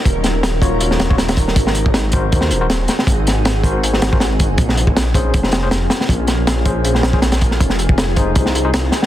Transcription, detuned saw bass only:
X:1
M:4/4
L:1/16
Q:"Swing 16ths" 1/4=159
K:Bbm
V:1 name="Detuned saw bass" clef=bass
E,,,8 E,,,2 E,,,6 | A,,,8 E,,2 E,,,4 z2 | A,,,8 A,,,2 A,,,4- A,,, G,,, | B,,,8 F,,,2 F,,,4 z2 |
B,,,8 B,,,2 B,,,6 | F,,,8 C,,2 C,,4 z2 |]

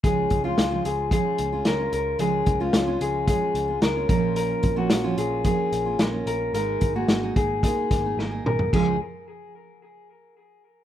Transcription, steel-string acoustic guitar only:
X:1
M:4/4
L:1/16
Q:1/4=110
K:Db
V:1 name="Steel-string acoustic guitar"
[F,A,DF]3 [D,F,A,DF]2 [D,F,A,DF]3 [F,A,DF]3 [A,DF]2 [A,DF]3 | [F,A,DF]3 [D,F,A,DF]2 [D,F,A,DF]3 [F,A,DF]3 [A,DF]2 [A,DF] [B,,F,B,DF]2- | [B,,F,B,DF]3 [B,,F,B,DF]2 [B,,F,B,DF]3 [F,B,DF]3 [B,DF]2 [B,DF]3 | [A,B,EA]3 [A,B,EA]2 [A,B,EA]3 [A,B,EA]3 [B,EA]2 [B,EA]3 |
[D,F,A,FA]2 z12 z2 |]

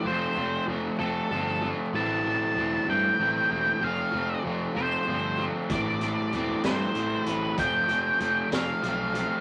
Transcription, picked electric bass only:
X:1
M:6/8
L:1/8
Q:3/8=64
K:Flyd
V:1 name="Picked electric bass" clef=bass
F,,, F,,, F,,, F,,, G,,,2 | A,,,2 E,,, G,, A,,, E,,, | F,,, F,,, F,,, F,,, G,,,2 | A,,,2 E,,, G,, A,,, A,,, |
F,,, F,,, F,,, F,,, B,,,2 |]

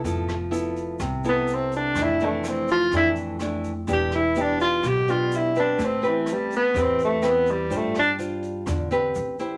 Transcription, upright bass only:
X:1
M:4/4
L:1/8
Q:1/4=125
K:Am
V:1 name="Upright bass" clef=bass
F,,,4 C,,4 | F,,,4 F,,4 | E,,,4 B,,,4 | A,,,4 E,,4 |
G,,,4 E,,2 A,,,2 |]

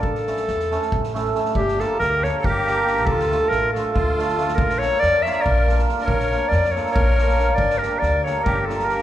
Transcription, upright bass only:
X:1
M:7/8
L:1/8
Q:1/4=139
K:none
V:1 name="Upright bass" clef=bass
A,,,2 E,,2 A,,,3 | G,,,2 D,,2 G,,,3 | D,,2 A,,,2 D,,3 | _B,,,2 F,,2 B,,,3 |
_B,,,2 F,,2 B,,,3 | G,,,2 D,,2 G,,,3 |]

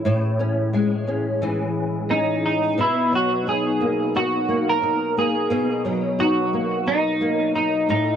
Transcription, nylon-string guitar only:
X:1
M:4/4
L:1/8
Q:"Swing 16ths" 1/4=88
K:B
V:1 name="Nylon-string guitar"
[=A,,E,G,CE] C G, C E,2 C2 | B,, F, D A, D A, D A, | B,, F, D A, D A, D =A,, |]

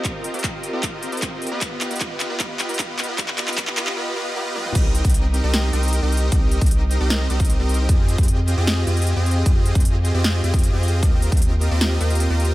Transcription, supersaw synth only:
X:1
M:4/4
L:1/16
Q:1/4=153
K:Cm
V:1 name="Supersaw synth"
[CFGBe]3 [CFGBe]4 [CFGBe] [FGBe]3 [CFGBe]4 [=B,FG=Be] | [=B,FG=B]3 [B,FGBe] [B,FGBe]3 [B,FGBe] [B,FGBe]3 [B,FGBe] B,3 [B,FGBe] | [=B,FG=Be]2 [B,FGBe]2 [B,FGBe]2 [B,FGBe]2 [B,FGBe]2 [B,FGBe]2 [B,FGBe]2 [B,FGBe]2 | [CEGBe]3 z4 [CEGBe]3 [CEGBe]3 [CEGBe]3 |
[CEGBe]3 [CEGBe]4 [CEGBe]3 [CEGBe]3 [CEGBe]3 | [CFGAe]3 [CFGA]4 [CFGAe]3 [CFGAe]3 [CFGAe]3 | [CGe]3 [CFGAe]4 [CFGAe]3 [CFGAe]3 [CFGAe]3 | [CFGBe]3 [CFG]4 [CFGBe]3 [CFGBe]3 [CFGBe]3 |]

